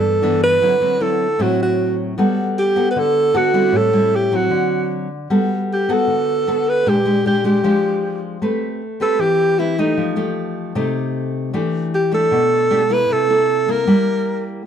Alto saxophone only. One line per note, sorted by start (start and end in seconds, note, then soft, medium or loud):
0.00 0.42 A4 medium
0.43 1.03 B4 loud
1.02 1.44 A4 medium
1.42 1.61 F#4 medium
1.63 1.97 F#4 medium
2.59 2.88 G4 medium
2.91 3.00 B4 medium
2.99 3.39 A4 loud
3.37 3.78 F#4 medium
3.77 4.17 A4 loud
4.15 4.37 G4 medium
4.35 4.92 F#4 medium
5.73 5.95 G4 medium
5.93 6.71 A4 medium
6.69 6.91 B4 medium
6.89 7.26 G4 medium
7.27 7.44 G4 medium
7.46 8.19 G4 medium
9.02 9.22 A4 medium
9.21 9.61 G4 loud
9.59 9.81 E4 medium
9.79 10.18 D#4 medium
11.94 12.12 G4 medium
12.14 12.94 A4 medium
12.93 13.14 B4 medium
13.12 13.72 A4 medium
13.71 14.47 A#4 medium